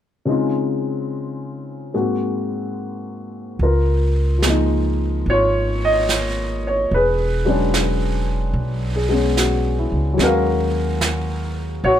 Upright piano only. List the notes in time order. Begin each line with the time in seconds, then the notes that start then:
0.25 C#3 G#3 C4 D#4
0.30 F4
1.94 G#2 G#3 A#3 C4 F#4
3.62 F4 A#4
4.38 F3 G#3
4.46 A#3 D#4
5.30 F4 C#5
5.85 D#5
6.67 C#5
6.94 G#4 B4
7.45 F#3 G#3 C#4
7.49 D4
8.96 G#4
9.09 G#3 B3 C#4
9.38 F#4
9.79 E4
10.13 F#3 G#3
10.20 C#4 F#4 A#4
10.25 F5
11.84 F#4 C#5